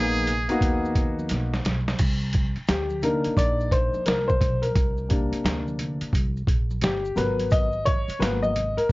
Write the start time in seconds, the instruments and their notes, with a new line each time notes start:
Already playing: upright bass A#1, grand piano A#3 B3 D#4 G#4, muted trumpet G#4
0.16 high conga, maracas
0.27 closed hi-hat, low conga, maracas
0.49 grand piano A#3 B3 D#4 F#4, muted upright bass stroke, closed hi-hat, maracas
0.61 upright bass D#2, kick, closed hi-hat, high conga, maracas
0.85 maracas
0.95 kick, closed hi-hat, low conga, maracas
1.19 high conga, maracas
1.29 upright bass B1, snare, closed hi-hat, maracas
1.53 snare, maracas
1.65 upright bass B1, snare, closed hi-hat, low conga, maracas
1.88 snare, high conga, maracas
1.99 upright bass C2, kick, closed hi-hat, crash, maracas
2.20 maracas
2.33 kick, closed hi-hat, high conga, maracas
2.56 muted upright bass stroke, closed hi-hat, maracas
2.68 upright bass D2, grand piano G4, snare, closed hi-hat, maracas
2.90 high conga, maracas
3.03 grand piano A#3 D4 D#4 A#4, closed hi-hat, low conga, maracas
3.25 muted upright bass stroke, closed hi-hat, maracas
3.37 upright bass A#1, grand piano D5, kick, closed hi-hat, high conga, maracas
3.60 maracas
3.71 grand piano C5, kick, closed hi-hat, low conga, maracas
3.94 muted upright bass stroke, high conga, maracas
4.06 upright bass C2, grand piano A#4, snare, closed hi-hat, maracas
4.28 grand piano C5, kick, maracas
4.41 upright bass B1, kick, closed hi-hat, low conga, maracas
4.62 grand piano A#4, closed hi-hat, high conga, maracas
4.76 upright bass C2, kick, closed hi-hat, maracas
4.98 maracas
5.09 grand piano C3 A#3 D4, kick, closed hi-hat, high conga, maracas
5.32 muted upright bass stroke, closed hi-hat, maracas
5.44 upright bass D2, snare, closed hi-hat, maracas
5.68 high conga, maracas
5.79 closed hi-hat, low conga, maracas
6.01 muted upright bass stroke, closed hi-hat, maracas
6.13 upright bass C2, kick, closed hi-hat, high conga, maracas
6.37 maracas
6.47 upright bass A#1, kick, closed hi-hat, low conga, maracas
6.71 high conga, maracas
6.82 upright bass G1, grand piano G4, snare, closed hi-hat, maracas
7.05 maracas
7.16 upright bass G#1, grand piano F#3 B3 A#4 B4, snare, closed hi-hat, low conga, maracas
7.39 closed hi-hat, high conga, maracas
7.50 grand piano D#5, kick, closed hi-hat, maracas
7.73 maracas
7.85 grand piano C#5, kick, closed hi-hat, high conga, maracas
8.08 muted upright bass stroke, closed hi-hat, maracas
8.19 upright bass G#1, grand piano F#3 A#3 B3 B4, snare, closed hi-hat, maracas
8.42 grand piano D#5, high conga, maracas
8.56 closed hi-hat, low conga, maracas
8.77 grand piano A#4, muted upright bass stroke, closed hi-hat, maracas